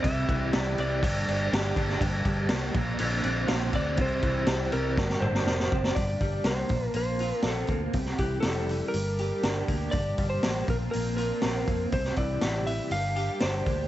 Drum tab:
CC |x-x-x-x-x-x-x-x-|x-x-x-x-x-x-x-x-|x-x-x-x---------|----------------|
HH |----------------|----------------|----------------|o-o-o-o-o-o-o-o-|
SD |----o-------o--o|----o-------o---|----o---oo-ooo-o|----o-------o---|
T2 |----------------|----------------|----------o-----|----------------|
BD |o-o-----o-----o-|o-o---o-------o-|o-o-----o-----o-|o-o---o-------o-|

CC |----------------|----------------|----------------|
HH |o-o-o-o-o-o-o-o-|o-o-o-o-o-o-o-o-|o-o-o-o-o-o-o-o-|
SD |-o--o-------o---|----o-------o---|-o--o-------o---|
T2 |----------------|----------------|----------------|
BD |o-o-----------o-|o-o---o-------o-|o-o-----------o-|